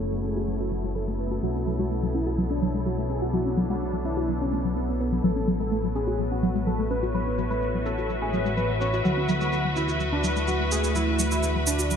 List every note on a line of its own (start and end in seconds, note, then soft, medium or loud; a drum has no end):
0.00 1.41 F#1 medium
0.00 1.39 A3 medium
0.00 0.07 A3 medium
0.00 6.03 B3 medium
0.00 1.39 C#4 medium
0.00 6.77 E4 medium
0.00 1.39 F#4 medium
0.00 0.14 A4 medium
0.00 6.77 A4 medium
0.00 1.43 C#5 medium
0.00 5.20 C#5 medium
0.00 shaker soft
0.13 0.16 F#3 medium
0.24 0.31 C#4 medium
0.24 0.49 G#4 medium
0.24 shaker medium
0.36 0.43 F#4 medium
0.36 shaker soft
0.48 0.55 F#3 medium
0.48 shaker soft
0.60 0.67 C#4 medium
0.60 0.85 F#4 medium
0.72 0.79 F#3 medium
0.72 shaker medium
0.84 0.91 G#3 medium
0.84 shaker soft
0.95 1.00 F#3 medium
0.95 1.12 A4 medium
0.95 shaker soft
1.08 1.14 A3 medium
1.19 1.26 C#4 medium
1.19 1.36 B4 medium
1.19 shaker medium
1.31 1.38 F#4 medium
1.31 shaker soft
1.43 5.22 B1 medium
1.43 1.50 F#3 loud
1.43 9.01 B3 medium
1.43 5.20 D4 medium
1.43 5.20 F#4 medium
1.43 1.68 F#4 medium
1.43 shaker soft
1.55 1.59 C#4 medium
1.67 1.74 F#3 medium
1.67 shaker medium
1.79 1.86 G#3 medium
1.79 2.04 F#4 medium
1.79 shaker soft
1.91 1.98 A3 medium
1.91 shaker soft
2.03 2.07 F#3 medium
2.14 2.21 C#4 medium
2.14 2.39 E4 medium
2.14 shaker medium
2.27 2.33 F#4 loud
2.27 shaker soft
2.38 2.45 F#3 medium
2.38 shaker soft
2.51 2.57 D4 medium
2.51 2.75 D4 medium
2.62 2.69 F#3 medium
2.62 shaker medium
2.74 2.81 G#3 medium
2.74 shaker soft
2.86 2.90 F#3 medium
2.86 3.03 F#4 medium
2.86 shaker soft
2.98 3.05 A3 medium
3.10 3.17 C#4 medium
3.10 3.27 G#4 medium
3.10 shaker medium
3.14 5.24 D4 medium
3.22 3.28 F#4 medium
3.22 shaker soft
3.33 3.40 F#3 medium
3.33 3.58 F#4 loud
3.33 shaker soft
3.46 3.50 C#4 medium
3.57 3.64 F#3 medium
3.57 shaker medium
3.69 3.76 G#3 medium
3.69 3.95 F#4 medium
3.69 shaker soft
3.81 3.88 A3 medium
3.81 shaker soft
3.93 3.97 F#3 medium
4.05 4.12 C#4 medium
4.05 4.30 E4 medium
4.05 shaker medium
4.17 4.24 F#4 medium
4.17 shaker soft
4.29 4.36 F#3 medium
4.29 shaker soft
4.41 4.66 C#4 medium
4.41 4.48 D4 medium
4.52 4.63 A3 medium
4.52 shaker medium
4.65 4.75 F#3 medium
4.65 shaker soft
4.76 4.93 B3 medium
4.76 4.80 C#4 medium
4.76 shaker soft
4.88 4.95 C#4 medium
5.00 5.17 B3 medium
5.00 5.07 C#4 medium
5.00 shaker medium
5.12 5.22 F#3 medium
5.12 shaker soft
5.24 9.03 A1 medium
5.24 5.31 F#3 loud
5.24 11.96 E4 medium
5.24 5.49 A4 medium
5.24 9.01 A4 medium
5.24 9.01 C#5 medium
5.24 shaker soft
5.36 5.40 C#4 medium
5.48 5.55 F#3 medium
5.48 shaker medium
5.60 5.67 G#3 medium
5.60 5.85 A4 medium
5.60 shaker soft
5.71 5.79 A3 medium
5.71 shaker soft
5.84 5.88 F#3 medium
5.84 11.96 B4 medium
5.89 11.96 F#4 medium
5.95 6.02 C#4 medium
5.95 6.20 G#4 medium
5.95 shaker medium
6.07 6.14 F#4 medium
6.07 shaker soft
6.19 6.26 F#3 medium
6.19 shaker soft
6.31 6.38 C#4 medium
6.31 6.56 F#4 medium
6.39 6.50 F#3 medium
6.39 11.96 E5 medium
6.39 shaker medium
6.55 6.62 G#3 medium
6.55 shaker soft
6.67 6.71 F#3 medium
6.67 6.84 A4 medium
6.67 shaker soft
6.79 6.86 A3 medium
6.91 6.98 C#4 medium
6.91 7.07 B4 medium
6.91 shaker medium
7.03 7.10 F#4 medium
7.03 shaker soft
7.14 7.21 F#3 loud
7.14 7.39 B4 medium
7.14 shaker soft
7.27 7.31 C#4 medium
7.38 7.45 F#3 medium
7.38 shaker medium
7.50 7.57 G#3 medium
7.50 7.75 B4 medium
7.50 shaker soft
7.62 7.69 A3 medium
7.62 shaker soft
7.74 7.78 F#3 medium
7.86 7.93 C#4 medium
7.86 8.11 A4 medium
7.86 shaker medium
7.98 8.05 F#4 medium
7.98 shaker soft
8.10 8.17 F#3 medium
8.10 shaker soft
8.22 8.29 C#4 medium
8.22 8.47 G#4 medium
8.33 8.41 F#3 medium
8.33 shaker medium
8.46 8.52 G#3 medium
8.46 shaker soft
8.57 8.62 F#3 medium
8.57 8.74 B4 medium
8.57 shaker soft
8.70 8.76 A3 medium
8.81 8.88 C#4 medium
8.81 8.98 C#5 medium
8.81 shaker medium
8.93 9.00 F#4 medium
8.93 shaker soft
9.05 11.96 D2 medium
9.05 9.12 F#3 loud
9.05 11.96 A3 medium
9.05 9.30 F#4 loud
9.05 11.96 F#4 medium
9.05 11.96 D5 medium
9.05 shaker soft
9.17 9.21 C#4 medium
9.29 9.36 F#3 medium
9.29 shaker medium
9.41 9.48 G#3 medium
9.41 9.66 F#4 loud
9.41 shaker soft
9.53 9.60 A3 medium
9.53 shaker soft
9.65 9.69 F#3 medium
9.76 9.83 C#4 medium
9.76 10.01 E4 medium
9.76 shaker medium
9.89 9.95 F#4 medium
9.89 shaker soft
10.00 10.07 F#3 medium
10.00 shaker soft
10.13 10.19 D4 medium
10.13 10.37 D4 medium
10.24 10.31 F#3 medium
10.24 shaker medium
10.36 10.43 G#3 medium
10.36 shaker soft
10.48 10.52 F#3 medium
10.48 10.65 F#4 medium
10.48 shaker soft
10.60 10.67 A3 medium
10.72 10.79 C#4 medium
10.72 10.88 G#4 medium
10.72 shaker medium
10.84 10.91 F#4 medium
10.84 shaker soft
10.95 11.03 F#3 loud
10.95 11.20 E4 loud
10.95 shaker soft
11.08 11.12 C#4 medium
11.19 11.26 F#3 medium
11.19 shaker medium
11.31 11.38 G#3 medium
11.31 11.56 E4 medium
11.31 shaker soft
11.43 11.50 A3 medium
11.43 shaker soft
11.55 11.59 F#3 medium
11.67 11.74 C#4 medium
11.67 11.92 D4 loud
11.67 shaker medium
11.79 11.86 F#4 loud
11.79 shaker soft
11.91 11.96 F#3 medium
11.91 shaker soft